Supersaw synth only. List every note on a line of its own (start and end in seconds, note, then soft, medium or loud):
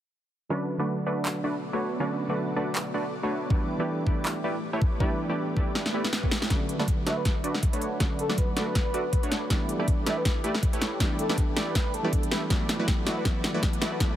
0.50 0.77 A3 medium
0.50 0.77 D4 medium
0.50 0.77 F#4 medium
0.50 0.77 B4 medium
0.50 0.77 D5 loud
0.80 1.05 A3 medium
0.80 1.05 D4 medium
0.80 1.05 F#4 medium
0.80 1.05 B4 medium
0.80 1.05 D5 medium
1.07 1.42 A3 loud
1.07 1.42 D4 medium
1.07 1.42 F#4 medium
1.07 1.42 B4 medium
1.07 1.42 D5 loud
1.44 1.55 A3 medium
1.44 1.55 D4 medium
1.44 1.55 F#4 medium
1.44 1.55 B4 medium
1.44 1.55 D5 medium
1.73 1.98 A3 loud
1.73 1.98 D4 medium
1.73 1.98 F#4 medium
1.73 1.98 B4 medium
1.73 1.98 C#5 loud
2.00 2.27 A3 medium
2.00 2.27 D4 medium
2.00 2.27 F#4 medium
2.00 2.27 B4 medium
2.00 2.27 D5 loud
2.29 2.55 A3 medium
2.29 2.55 D4 medium
2.29 2.55 F#4 medium
2.29 2.55 B4 medium
2.29 2.55 D5 medium
2.56 2.92 A3 loud
2.56 2.92 D4 medium
2.56 2.92 F#4 medium
2.56 2.92 B4 medium
2.56 2.92 D5 loud
2.94 3.05 A3 medium
2.94 3.05 D4 medium
2.94 3.05 F#4 medium
2.94 3.05 B4 medium
2.94 3.05 D5 medium
3.23 3.48 A3 loud
3.23 3.48 D4 medium
3.23 3.48 F#4 medium
3.23 3.48 B4 medium
3.23 3.48 C#5 loud
3.50 3.77 A3 medium
3.50 3.77 E4 medium
3.50 3.77 G4 medium
3.50 3.77 B4 medium
3.50 3.77 D5 loud
3.80 4.05 A3 medium
3.80 4.05 E4 medium
3.80 4.05 G4 medium
3.80 4.05 B4 medium
3.80 4.05 D5 medium
4.07 4.42 A3 loud
4.07 4.42 E4 medium
4.07 4.42 G4 medium
4.07 4.42 B4 medium
4.07 4.42 D5 loud
4.44 4.55 A3 medium
4.44 4.55 E4 medium
4.44 4.55 G4 medium
4.44 4.55 B4 medium
4.44 4.55 D5 medium
4.73 4.98 A3 medium
4.73 4.98 E4 medium
4.73 4.98 G4 medium
4.73 4.98 B4 medium
4.73 4.98 C#5 loud
5.00 5.27 A3 medium
5.00 5.27 E4 medium
5.00 5.27 G4 medium
5.00 5.27 B4 medium
5.00 5.27 D5 loud
5.29 5.55 A3 medium
5.29 5.55 E4 medium
5.29 5.55 G4 medium
5.29 5.55 B4 medium
5.29 5.55 D5 medium
5.56 5.92 A3 loud
5.56 5.92 E4 medium
5.56 5.92 G4 medium
5.56 5.92 B4 medium
5.56 5.92 D5 loud
5.94 6.05 A3 medium
5.94 6.05 E4 medium
5.94 6.05 G4 medium
5.94 6.05 B4 medium
5.94 6.05 D5 medium
6.23 6.48 A3 medium
6.23 6.48 E4 medium
6.23 6.48 G4 medium
6.23 6.48 B4 medium
6.23 6.48 C#5 loud
6.50 6.77 A3 medium
6.50 6.77 D4 medium
6.50 6.77 F#4 medium
6.50 6.77 B4 medium
6.50 6.77 D5 loud
6.79 7.05 A3 medium
6.79 7.05 D4 medium
6.79 7.05 F#4 medium
6.79 7.05 B4 medium
6.79 7.05 D5 medium
7.06 7.42 A3 loud
7.06 7.42 D4 medium
7.06 7.42 F#4 medium
7.06 7.42 B4 medium
7.06 7.42 D5 loud
7.44 7.55 A3 medium
7.44 7.55 D4 medium
7.44 7.55 F#4 medium
7.44 7.55 B4 medium
7.44 7.55 D5 loud
7.73 7.98 A3 loud
7.73 7.98 D4 medium
7.73 7.98 F#4 medium
7.73 7.98 B4 medium
7.73 7.98 C#5 loud
8.00 8.27 A3 medium
8.00 8.27 D4 medium
8.00 8.27 F#4 medium
8.00 8.27 B4 medium
8.00 8.27 D5 loud
8.29 8.55 A3 medium
8.29 8.55 D4 medium
8.29 8.55 F#4 medium
8.29 8.55 B4 medium
8.29 8.55 D5 medium
8.57 8.92 A3 medium
8.57 8.92 D4 medium
8.57 8.92 F#4 loud
8.57 8.92 B4 medium
8.57 8.92 D5 loud
8.94 9.05 A3 medium
8.94 9.05 D4 medium
8.94 9.05 F#4 medium
8.94 9.05 B4 medium
8.94 9.05 D5 loud
9.23 9.48 A3 loud
9.23 9.48 D4 medium
9.23 9.48 F#4 medium
9.23 9.48 B4 medium
9.23 9.48 C#5 loud
9.50 9.77 A3 medium
9.50 9.77 E4 medium
9.50 9.77 G4 medium
9.50 9.77 B4 medium
9.50 9.77 D5 loud
9.79 10.05 A3 medium
9.79 10.05 E4 medium
9.79 10.05 G4 medium
9.79 10.05 B4 medium
9.79 10.05 D5 medium
10.07 10.42 A3 loud
10.07 10.42 E4 medium
10.07 10.42 G4 medium
10.07 10.42 B4 medium
10.07 10.42 D5 loud
10.44 10.55 A3 medium
10.44 10.55 E4 medium
10.44 10.55 G4 medium
10.44 10.55 B4 medium
10.44 10.55 D5 medium
10.73 10.98 A3 medium
10.73 10.98 E4 medium
10.73 10.98 G4 medium
10.73 10.98 B4 medium
10.73 10.98 C#5 loud
11.00 11.27 A3 medium
11.00 11.27 E4 medium
11.00 11.27 G4 medium
11.00 11.27 B4 medium
11.00 11.27 D5 loud
11.29 11.55 A3 medium
11.29 11.55 E4 medium
11.29 11.55 G4 medium
11.29 11.55 B4 medium
11.29 11.55 D5 medium
11.56 11.92 A3 loud
11.56 11.92 E4 medium
11.56 11.92 G4 medium
11.56 11.92 B4 medium
11.56 11.92 D5 loud
12.04 12.13 A3 medium
12.04 12.13 E4 medium
12.04 12.13 G4 medium
12.04 12.13 B4 medium
12.04 12.13 D5 medium
12.32 12.42 A3 medium
12.32 12.42 E4 medium
12.32 12.42 G4 medium
12.32 12.42 B4 medium
12.32 12.42 E5 loud
12.50 12.77 A3 medium
12.50 12.77 E4 medium
12.50 12.77 F#4 medium
12.50 12.77 B4 medium
12.50 12.77 D5 loud
12.79 13.05 A3 medium
12.79 13.05 E4 medium
12.79 13.05 F#4 medium
12.79 13.05 B4 medium
12.79 13.05 D5 medium
13.06 13.24 A3 medium
13.06 13.24 E4 medium
13.06 13.24 F#4 medium
13.06 13.24 B4 medium
13.06 13.24 D5 loud
13.25 13.52 A3 medium
13.25 13.52 E4 medium
13.25 13.52 F#4 medium
13.25 13.52 B4 medium
13.25 13.52 D5 loud
13.54 13.80 A3 medium
13.54 13.80 E4 medium
13.54 13.80 F#4 medium
13.54 13.80 B4 medium
13.54 13.80 D5 medium
13.81 13.99 A3 medium
13.81 13.99 E4 medium
13.81 13.99 F#4 medium
13.81 13.99 B4 medium
13.81 13.99 D5 loud
14.00 14.16 A3 medium
14.00 14.16 F#4 medium
14.00 14.16 B4 medium
14.00 14.16 D5 medium